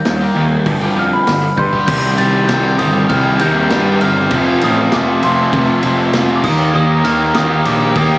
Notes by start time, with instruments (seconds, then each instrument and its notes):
Already playing: glockenspiel G6
0.05 picked electric bass D#2, overdriven electric guitar D#3 G3, muted overdriven electric guitar stroke, snare, open hi-hat
0.21 overdriven electric guitar D#3 A#3 D#4 G4
0.34 picked electric bass D#2, overdriven electric guitar D#3 G3 A#3
0.64 picked electric bass G1, overdriven electric guitar G2 D3 F3, muted overdriven electric guitar stroke, kick, open hi-hat
0.82 overdriven electric guitar F3 G3 B3 G4
0.95 picked electric bass F2, overdriven electric guitar G2 D3 F3
0.99 glockenspiel F6
1.13 glockenspiel B5
1.26 picked electric bass G1, overdriven electric guitar G2 D3, snare, open hi-hat
1.42 muted overdriven electric guitar stroke
1.56 overdriven electric guitar G2 D3, picked electric bass G2, glockenspiel C6 G6, kick
1.73 overdriven electric guitar F3 G3 B3 G4, kick
1.87 picked electric bass C2, overdriven electric guitar C3 D#3 G3 C4 G4, glockenspiel G6, kick, crash
2.18 picked electric bass C2, overdriven electric guitar C3 D#3 G3 C4 G4, glockenspiel A6, ride
2.48 picked electric bass C2, overdriven electric guitar C3 D#3 G3 C4, glockenspiel G6, snare, ride
2.52 overdriven electric guitar G4
2.78 picked electric bass G1, overdriven electric guitar C3 D#3 G3 C4 G4, glockenspiel D#6, ride
3.09 picked electric bass C2, overdriven electric guitar C3 D#3 G3 C4 G4, glockenspiel F6, kick, ride
3.39 picked electric bass D#2, overdriven electric guitar C3 D#3 G3 C4 G4, glockenspiel G6, ride
3.69 picked electric bass G2, overdriven electric guitar C3 D#3 G3 C4 G4, snare, ride
4.00 picked electric bass G1, overdriven electric guitar C3 D#3 G3 C4 G4, glockenspiel F6, ride
4.30 picked electric bass F1, overdriven electric guitar F2 C3 F3 A3 C4 F4, kick, ride
4.60 picked electric bass A1, overdriven electric guitar F2 C3 F3 A3 C4 F4, ride
4.64 glockenspiel D#6
4.91 picked electric bass F1, overdriven electric guitar F2 C3 F3 A3 C4 F4, glockenspiel D6, snare, ride
5.16 glockenspiel D6
5.21 picked electric bass F1, overdriven electric guitar F2 C3 F3 A3 C4 F4, glockenspiel C6, ride
5.52 picked electric bass F1, overdriven electric guitar F2 C3 F3 A3 C4 F4, kick, ride
5.82 picked electric bass F1, overdriven electric guitar F2 C3 F3 A3 C4 F4, ride
6.13 picked electric bass F1, overdriven electric guitar F2 C3 F3 A3 C4 F4, snare, ride
6.36 glockenspiel D6
6.44 picked electric bass D#2, overdriven electric guitar D#3 A#3 D#4 G4, glockenspiel D#6, kick, crash
6.75 picked electric bass D#2, overdriven electric guitar D#3 A#3 D#4 G4, glockenspiel D#6
7.04 picked electric bass D#2, overdriven electric guitar D#3 A#3 D#4 G4, glockenspiel F6, ride
7.34 picked electric bass D#2, overdriven electric guitar D#3 A#3 D#4 G4, glockenspiel D#6, snare, ride
7.65 picked electric bass A#1, overdriven electric guitar D#3 A#3 D#4 G4, glockenspiel D6, ride
7.95 picked electric bass D#2, overdriven electric guitar D#3 A#3 D#4 G4, glockenspiel D#6, kick, ride